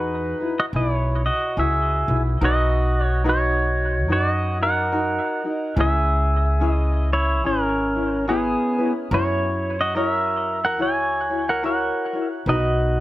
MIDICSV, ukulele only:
0, 0, Header, 1, 2, 480
1, 0, Start_track
1, 0, Key_signature, 5, "major"
1, 0, Tempo, 837989
1, 1380, Time_signature, 4, 2, 24, 8
1, 7448, End_track
2, 0, Start_track
2, 0, Title_t, "Ukulele"
2, 0, Program_c, 0, 24
2, 0, Note_on_c, 0, 66, 88
2, 0, Note_on_c, 0, 68, 68
2, 0, Note_on_c, 0, 71, 84
2, 225, Note_off_c, 0, 71, 0
2, 229, Note_off_c, 0, 66, 0
2, 230, Note_off_c, 0, 68, 0
2, 231, Note_on_c, 0, 71, 48
2, 236, Note_on_c, 0, 66, 45
2, 242, Note_on_c, 0, 64, 38
2, 421, Note_off_c, 0, 64, 0
2, 421, Note_off_c, 0, 71, 0
2, 423, Note_on_c, 0, 68, 52
2, 424, Note_off_c, 0, 66, 0
2, 428, Note_on_c, 0, 64, 55
2, 432, Note_on_c, 0, 66, 51
2, 435, Note_on_c, 0, 71, 57
2, 894, Note_off_c, 0, 68, 0
2, 895, Note_off_c, 0, 64, 0
2, 900, Note_on_c, 0, 68, 82
2, 902, Note_on_c, 0, 64, 71
2, 903, Note_off_c, 0, 66, 0
2, 905, Note_off_c, 0, 71, 0
2, 905, Note_on_c, 0, 66, 81
2, 908, Note_on_c, 0, 71, 83
2, 1185, Note_off_c, 0, 71, 0
2, 1189, Note_off_c, 0, 68, 0
2, 1190, Note_off_c, 0, 64, 0
2, 1192, Note_off_c, 0, 66, 0
2, 1192, Note_on_c, 0, 71, 54
2, 1199, Note_on_c, 0, 66, 50
2, 1203, Note_on_c, 0, 64, 42
2, 1378, Note_off_c, 0, 71, 0
2, 1380, Note_off_c, 0, 66, 0
2, 1380, Note_on_c, 0, 70, 77
2, 1383, Note_on_c, 0, 63, 82
2, 1385, Note_off_c, 0, 64, 0
2, 1387, Note_on_c, 0, 66, 78
2, 1388, Note_on_c, 0, 71, 76
2, 1850, Note_off_c, 0, 70, 0
2, 1853, Note_off_c, 0, 63, 0
2, 1855, Note_off_c, 0, 66, 0
2, 1857, Note_on_c, 0, 70, 77
2, 1860, Note_on_c, 0, 63, 73
2, 1862, Note_off_c, 0, 71, 0
2, 1862, Note_on_c, 0, 66, 93
2, 1865, Note_on_c, 0, 71, 88
2, 2330, Note_off_c, 0, 70, 0
2, 2336, Note_off_c, 0, 63, 0
2, 2337, Note_on_c, 0, 70, 59
2, 2339, Note_off_c, 0, 66, 0
2, 2343, Note_on_c, 0, 63, 57
2, 2346, Note_off_c, 0, 71, 0
2, 2346, Note_on_c, 0, 66, 52
2, 2349, Note_on_c, 0, 71, 67
2, 2627, Note_off_c, 0, 70, 0
2, 2628, Note_off_c, 0, 66, 0
2, 2630, Note_off_c, 0, 63, 0
2, 2633, Note_off_c, 0, 71, 0
2, 2635, Note_on_c, 0, 66, 40
2, 2641, Note_on_c, 0, 63, 40
2, 2814, Note_off_c, 0, 63, 0
2, 2815, Note_off_c, 0, 66, 0
2, 2818, Note_on_c, 0, 70, 78
2, 2820, Note_on_c, 0, 63, 83
2, 2822, Note_on_c, 0, 66, 82
2, 3108, Note_off_c, 0, 70, 0
2, 3109, Note_off_c, 0, 63, 0
2, 3110, Note_off_c, 0, 66, 0
2, 3116, Note_on_c, 0, 66, 47
2, 3121, Note_on_c, 0, 63, 43
2, 3299, Note_on_c, 0, 68, 70
2, 3300, Note_off_c, 0, 63, 0
2, 3302, Note_off_c, 0, 66, 0
2, 3302, Note_on_c, 0, 61, 75
2, 3304, Note_on_c, 0, 64, 74
2, 3307, Note_on_c, 0, 71, 85
2, 3774, Note_off_c, 0, 68, 0
2, 3780, Note_on_c, 0, 68, 71
2, 3781, Note_off_c, 0, 71, 0
2, 3783, Note_off_c, 0, 61, 0
2, 3785, Note_on_c, 0, 61, 76
2, 3786, Note_off_c, 0, 64, 0
2, 3788, Note_on_c, 0, 64, 88
2, 3788, Note_on_c, 0, 71, 91
2, 4254, Note_off_c, 0, 68, 0
2, 4261, Note_on_c, 0, 68, 56
2, 4263, Note_off_c, 0, 61, 0
2, 4264, Note_off_c, 0, 71, 0
2, 4265, Note_off_c, 0, 64, 0
2, 4266, Note_on_c, 0, 61, 57
2, 4267, Note_on_c, 0, 64, 51
2, 4549, Note_off_c, 0, 64, 0
2, 4550, Note_off_c, 0, 68, 0
2, 4552, Note_off_c, 0, 61, 0
2, 4556, Note_on_c, 0, 64, 38
2, 4562, Note_on_c, 0, 61, 43
2, 4738, Note_off_c, 0, 64, 0
2, 4739, Note_off_c, 0, 61, 0
2, 4741, Note_on_c, 0, 68, 89
2, 4745, Note_on_c, 0, 64, 80
2, 4746, Note_on_c, 0, 61, 78
2, 4748, Note_on_c, 0, 71, 92
2, 5024, Note_off_c, 0, 71, 0
2, 5030, Note_off_c, 0, 68, 0
2, 5031, Note_off_c, 0, 64, 0
2, 5031, Note_on_c, 0, 71, 56
2, 5032, Note_off_c, 0, 61, 0
2, 5037, Note_on_c, 0, 64, 46
2, 5042, Note_on_c, 0, 61, 46
2, 5217, Note_off_c, 0, 64, 0
2, 5219, Note_on_c, 0, 70, 81
2, 5221, Note_off_c, 0, 61, 0
2, 5221, Note_off_c, 0, 71, 0
2, 5224, Note_on_c, 0, 64, 78
2, 5225, Note_on_c, 0, 66, 84
2, 5228, Note_on_c, 0, 73, 92
2, 5696, Note_off_c, 0, 64, 0
2, 5697, Note_off_c, 0, 70, 0
2, 5699, Note_on_c, 0, 70, 74
2, 5700, Note_off_c, 0, 66, 0
2, 5701, Note_off_c, 0, 73, 0
2, 5703, Note_on_c, 0, 64, 80
2, 5706, Note_on_c, 0, 66, 86
2, 5708, Note_on_c, 0, 73, 92
2, 6174, Note_off_c, 0, 64, 0
2, 6174, Note_off_c, 0, 70, 0
2, 6177, Note_on_c, 0, 70, 48
2, 6181, Note_on_c, 0, 64, 61
2, 6182, Note_off_c, 0, 66, 0
2, 6182, Note_off_c, 0, 73, 0
2, 6185, Note_on_c, 0, 66, 65
2, 6189, Note_on_c, 0, 73, 64
2, 6464, Note_off_c, 0, 73, 0
2, 6468, Note_off_c, 0, 66, 0
2, 6468, Note_off_c, 0, 70, 0
2, 6471, Note_off_c, 0, 64, 0
2, 6471, Note_on_c, 0, 73, 49
2, 6475, Note_on_c, 0, 66, 43
2, 6479, Note_on_c, 0, 64, 42
2, 6658, Note_off_c, 0, 64, 0
2, 6658, Note_off_c, 0, 73, 0
2, 6659, Note_off_c, 0, 66, 0
2, 6660, Note_on_c, 0, 70, 74
2, 6665, Note_on_c, 0, 64, 89
2, 6666, Note_on_c, 0, 66, 82
2, 6668, Note_on_c, 0, 73, 90
2, 6942, Note_off_c, 0, 73, 0
2, 6946, Note_off_c, 0, 70, 0
2, 6948, Note_on_c, 0, 73, 52
2, 6950, Note_off_c, 0, 66, 0
2, 6953, Note_off_c, 0, 64, 0
2, 6957, Note_on_c, 0, 66, 43
2, 6962, Note_on_c, 0, 64, 41
2, 7141, Note_off_c, 0, 66, 0
2, 7141, Note_off_c, 0, 73, 0
2, 7143, Note_on_c, 0, 71, 78
2, 7145, Note_on_c, 0, 63, 79
2, 7146, Note_off_c, 0, 64, 0
2, 7148, Note_on_c, 0, 66, 82
2, 7150, Note_on_c, 0, 70, 79
2, 7448, Note_off_c, 0, 63, 0
2, 7448, Note_off_c, 0, 66, 0
2, 7448, Note_off_c, 0, 70, 0
2, 7448, Note_off_c, 0, 71, 0
2, 7448, End_track
0, 0, End_of_file